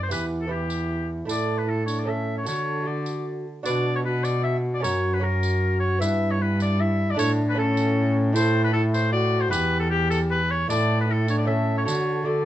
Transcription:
Already playing: cello F#2
0.03 oboe C5
0.09 cello E2, lute E2 B3 E4 G4, trombone E4, oboe B4, tambourine
0.41 oboe A4
0.47 lute B3 E4 G4, trombone E4, oboe G4
0.70 tambourine
1.25 cello A2, lute A2 A3 E4 A4, trombone E4, tambourine
1.30 oboe D5
1.58 oboe B4
1.67 trombone E4, oboe A4
1.86 trombone D4, oboe C#5, tambourine
1.99 oboe D5
2.04 lute A3 C#4 A4
2.08 trombone C#4, oboe E5
2.38 oboe C#5
2.43 cello D3, lute D3 A3 F#4 A4, tambourine
2.47 trombone F#4, oboe C#5
2.83 lute A3 F#4 A4
2.87 trombone F#4, oboe D5
3.06 tambourine
3.63 cello B2, lute B2 D4 F#4 B4, oboe D5, tambourine
3.67 trombone F#4
3.95 oboe C#5
4.05 trombone F#4, oboe B4
4.23 oboe D5, tambourine
4.43 oboe E5
4.74 oboe D5
4.80 cello F#2, lute C#4 F#4 A#4, trombone F#4, oboe C#5
4.84 lute F#2, tambourine
5.13 oboe B4
5.19 lute C#4 F#4 A#4, trombone F#4
5.24 oboe A#4
5.43 tambourine
5.79 oboe C#5
5.99 cello G2, lute G2 B3 E4 B4, trombone E4, oboe E5, tambourine
6.31 oboe C#5
6.41 trombone E4, oboe B4
6.60 oboe D5, tambourine
6.80 trombone E4, oboe E5
7.10 lute D4, oboe D5
7.16 lute A2 E4 A4, cello A2, trombone D4, oboe C#5, tambourine
7.49 oboe B4
7.54 lute C#4 E4 A4, trombone C#4
7.59 oboe A4
7.77 tambourine
8.33 lute A3 E4 A4, trombone E4, oboe C5, tambourine
8.64 oboe B4
8.73 trombone E4, oboe A4
8.94 oboe C5, tambourine
9.12 trombone F#4, oboe D5
9.40 oboe C5
9.48 lute E2 B3 E4 G4, trombone G4, oboe B4
9.53 cello E2, tambourine
9.79 oboe A4
9.90 oboe G4, trombone G4
10.10 oboe A4, tambourine
10.30 oboe B4
10.50 oboe C#5
10.68 cello A2, lute A3 E4 A4, trombone E4, oboe D5, tambourine
10.72 lute A2
11.00 oboe B4
11.09 trombone E4, oboe A4
11.28 trombone D4, oboe C#5, tambourine
11.38 oboe D5
11.45 lute A3 C#4 A4, trombone C#4, oboe E5
11.77 oboe C#5
11.83 lute D3 A3 F#4 A4, cello D3, trombone F#4, oboe C#5
11.88 tambourine
12.23 lute A3 F#4 A4, trombone A4, oboe D5

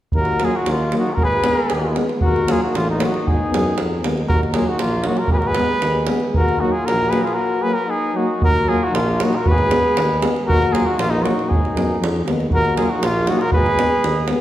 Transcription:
0.12 tuba D#2, trumpet A#4, davul low
0.20 flugelhorn F#4
0.25 davul high
0.40 euphonium F#3 A#3, davul high
0.44 flugelhorn F4, trumpet G#4
0.56 trumpet F#4
0.61 flugelhorn D#4
0.66 tuba D#2, davul high
0.71 flugelhorn A#3, trumpet F4
0.92 euphonium F#3 A#3, davul high
0.97 flugelhorn D#4, trumpet F#4
1.07 flugelhorn F#4, davul high
1.14 trumpet A#4, davul low
1.19 tuba G#1, flugelhorn G#4
1.24 trumpet B4
1.32 davul high
1.44 euphonium G#3 B3, davul high
1.70 tuba D#2, davul high
1.95 euphonium G#3 B3, davul high
2.09 davul high
2.21 tuba D#2, flugelhorn F#4, trumpet A#4, davul low
2.36 davul high
2.48 euphonium F#3 A#3, flugelhorn F4, trumpet G#4, davul high
2.63 flugelhorn D#4, trumpet F#4
2.75 tuba A1, flugelhorn A#3, trumpet F4, davul high
2.90 flugelhorn B3, trumpet D#4
2.99 euphonium F#3 A#3, davul high
3.03 flugelhorn D#4, trumpet F#4
3.14 davul high
3.27 tuba G#1, flugelhorn D#4, trumpet G#4, davul low
3.50 tuba F#2, euphonium G#3 B3, davul high
3.78 tuba F2, davul high
4.02 tuba D#2, euphonium G#3 B3, davul high
4.17 davul high
4.28 tuba D#2, flugelhorn F#4, trumpet A#4, davul low
4.43 davul high
4.54 euphonium F#3 A#3, flugelhorn F4, trumpet G#4, davul high
4.66 flugelhorn D#4, trumpet F#4
4.79 tuba A#1, flugelhorn A#3, trumpet F4, davul high
5.04 euphonium F#3 A#3, flugelhorn D#4, trumpet F#4, davul high
5.15 flugelhorn F#4, trumpet A#4, davul high
5.28 tuba G#1, flugelhorn G#4, davul low
5.32 trumpet B4
5.38 flugelhorn F#4, trumpet A#4, davul high
5.47 flugelhorn G#4, trumpet B4
5.55 euphonium B3, davul high
5.59 euphonium G#3
5.82 tuba D#2, davul high
6.07 euphonium G#3 B3, davul high
6.20 davul high
6.34 tuba D#2, flugelhorn F#4, trumpet A#4, davul low
6.49 davul high
6.59 euphonium F#3 A#3, flugelhorn D#4, trumpet F#4
6.72 flugelhorn F4, trumpet G#4
6.85 tuba A#1, flugelhorn F#4, trumpet A#4, davul high
7.09 euphonium F#3 A#3, flugelhorn G#4, trumpet B4, davul high
7.22 flugelhorn F4, trumpet G#4
7.27 davul high
7.34 flugelhorn F#4, trumpet A#4
7.62 euphonium F#3 A#3, flugelhorn G#4, trumpet B4
7.74 flugelhorn F#4, trumpet A#4
7.87 flugelhorn D#4, trumpet G#4
8.14 euphonium F#3 A#3, flugelhorn D#4, trumpet F#4
8.41 tuba D#2, flugelhorn F#4, trumpet A#4, davul low
8.56 davul high
8.65 euphonium F#3, trumpet G#4
8.70 euphonium A#3, flugelhorn F4
8.84 trumpet F#4
8.88 flugelhorn D#4
8.92 tuba A#1, trumpet F4, davul high
9.00 flugelhorn A#3
9.19 euphonium F#3 A#3, flugelhorn D#4, trumpet F#4, davul high
9.33 trumpet A#4, davul high
9.38 flugelhorn F#4
9.45 tuba G#1, trumpet B4, davul low
9.52 flugelhorn G#4
9.58 davul high
9.69 euphonium G#3 B3, davul high
9.97 tuba D#2, davul high
10.21 euphonium G#3 B3, davul high
10.36 davul high
10.46 tuba D#2, flugelhorn F#4, trumpet A#4, davul low
10.62 davul high
10.72 euphonium F#3 A#3, flugelhorn F4, trumpet G#4, davul high
10.86 flugelhorn D#4, trumpet F#4
10.98 tuba A#1, flugelhorn A#3, trumpet F4, davul high
11.10 flugelhorn B3, trumpet D#4
11.22 euphonium F#3 A#3, flugelhorn D#4, trumpet F#4, davul high
11.39 davul high
11.49 tuba G#1, trumpet G#4, davul low
11.53 flugelhorn D#4
11.65 davul high
11.74 tuba F#2, euphonium G#3 B3, davul high
12.01 tuba F2, davul high
12.16 davul high
12.25 tuba D#2, euphonium G#3 B3, davul high
12.40 davul high
12.50 tuba D#2, flugelhorn F#4, trumpet A#4, davul low
12.65 davul high
12.75 euphonium F#3 A#3, flugelhorn F4, trumpet G#4, davul high
12.90 flugelhorn D#4, trumpet F#4
13.00 tuba A#1, trumpet F4, davul high
13.05 flugelhorn A#3
13.27 euphonium F#3 A#3, flugelhorn D#4, trumpet F#4, davul high
13.40 flugelhorn F#4, trumpet A#4, davul high
13.52 tuba G#1, flugelhorn G#4, trumpet B4, davul low
13.66 davul high
13.78 euphonium G#3 B3, davul high
14.03 tuba D#2, davul high
14.28 euphonium G#3 B3, davul high

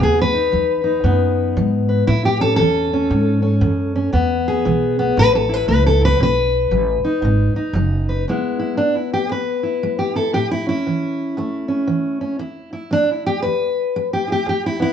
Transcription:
Already playing: steel-string acoustic guitar B3
0.00 upright bass D#2, steel-string acoustic guitar B2 G#4
0.21 steel-string acoustic guitar B4
0.34 steel-string acoustic guitar D#4
0.52 upright bass E2, steel-string acoustic guitar F#3
0.84 steel-string acoustic guitar D#4
1.04 upright bass F#2, steel-string acoustic guitar B2 B3
1.57 upright bass G#2, steel-string acoustic guitar F#3
1.89 steel-string acoustic guitar B4
2.07 steel-string acoustic guitar A2 E4, upright bass A2
2.25 steel-string acoustic guitar G4
2.40 steel-string acoustic guitar C#4 A4
2.56 upright bass E2, steel-string acoustic guitar E3 A4
2.93 steel-string acoustic guitar C#4
3.10 steel-string acoustic guitar E2, upright bass G#2
3.42 steel-string acoustic guitar C#4
3.61 upright bass F#2, steel-string acoustic guitar E3
3.96 steel-string acoustic guitar C#4
4.13 steel-string acoustic guitar E2 B3, upright bass E2
4.48 steel-string acoustic guitar G#4
4.65 upright bass B1, steel-string acoustic guitar E3
4.99 steel-string acoustic guitar B3
5.17 upright bass A1, steel-string acoustic guitar A2 B4
5.35 steel-string acoustic guitar A4
5.49 steel-string acoustic guitar E4
5.54 steel-string acoustic guitar B4
5.68 upright bass C#2, steel-string acoustic guitar A3 B4
5.86 steel-string acoustic guitar A4
6.01 steel-string acoustic guitar E4 B4
6.20 upright bass B1, steel-string acoustic guitar B2 B4
6.71 upright bass A1, steel-string acoustic guitar F#3
7.03 steel-string acoustic guitar D#4, muted upright bass stroke
7.22 upright bass G#1, steel-string acoustic guitar B2
7.55 steel-string acoustic guitar D#4, muted upright bass stroke
7.73 upright bass F#1, steel-string acoustic guitar F#3
8.09 steel-string acoustic guitar B4
8.28 steel-string acoustic guitar E2 G#3 B3 E4
8.59 steel-string acoustic guitar E4
8.77 steel-string acoustic guitar G#3 D4
8.95 steel-string acoustic guitar E4
9.13 steel-string acoustic guitar G4
9.29 steel-string acoustic guitar E2 B4
9.63 steel-string acoustic guitar E4
9.83 steel-string acoustic guitar G#3
9.99 steel-string acoustic guitar G4
10.15 steel-string acoustic guitar E4 A4
10.33 steel-string acoustic guitar A2 G4
10.51 steel-string acoustic guitar E4
10.66 steel-string acoustic guitar C#4 E4
10.87 steel-string acoustic guitar E3
11.37 steel-string acoustic guitar E2 A3
11.68 steel-string acoustic guitar C#4
11.87 steel-string acoustic guitar E3
12.21 steel-string acoustic guitar C#4
12.39 steel-string acoustic guitar E2 E4
12.73 steel-string acoustic guitar E4
12.91 steel-string acoustic guitar G#3 D4
13.11 steel-string acoustic guitar E4
13.26 steel-string acoustic guitar G4
13.42 steel-string acoustic guitar E2 B4
13.96 steel-string acoustic guitar G#3
14.13 steel-string acoustic guitar G4
14.28 steel-string acoustic guitar E4
14.32 steel-string acoustic guitar G4
14.46 steel-string acoustic guitar E2 G4
14.66 steel-string acoustic guitar E4
14.80 steel-string acoustic guitar B3 E4

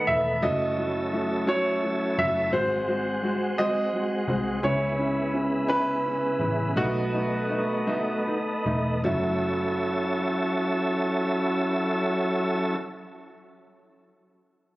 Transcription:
Already playing: tonewheel organ D#3 A3 B3
0.07 picked electric bass E1, upright piano B3 D#4 A4, grand piano E5
0.42 picked electric bass F#1, tonewheel organ F#3 C#4 E4 A4, upright piano A3 E4 F#4, grand piano D#5
0.78 upright piano A3 E4 F#4
1.13 upright piano A3 E4 F#4
1.47 upright piano A3 E4 F#4, grand piano C#5
1.83 upright piano A3 E4 F#4
2.18 picked electric bass F#1, upright piano A3 E4 F#4, grand piano E5
2.52 picked electric bass G#1, upright piano G#3 C4 F#4, tonewheel organ G#3 C4 F#4, grand piano C5
2.88 upright piano G#3 C4 F#4
3.22 upright piano G#3 C4 F#4
3.58 upright piano G#3 C4 F#4, grand piano D#5
3.93 upright piano G#3 C4 F#4
4.28 picked electric bass C2, upright piano G#3 C4 F#4
4.63 picked electric bass C#2, tonewheel organ C#3 B3 E4, upright piano B3 C#4 E4, grand piano C#5
4.98 upright piano B3 C#4 E4
5.33 upright piano B3 C#4 E4
5.68 upright piano B3 C#4 E4, grand piano B4
6.05 upright piano B3 C#4 E4
6.39 picked electric bass A1, upright piano B3 C#4 E4
6.76 picked electric bass B1, upright piano A3 B3 D#4, tonewheel organ A3 D#4, grand piano F#4
7.12 upright piano A3 B3 D#4
7.49 upright piano A3 B3 D#4
7.87 upright piano A3 B3 D#4
8.26 upright piano B3 D#4
8.65 picked electric bass E1, upright piano A3 B3 D#4
9.04 picked electric bass F#1, tonewheel organ F#3 C#4 E4 A4, upright piano F#3 A3 E4

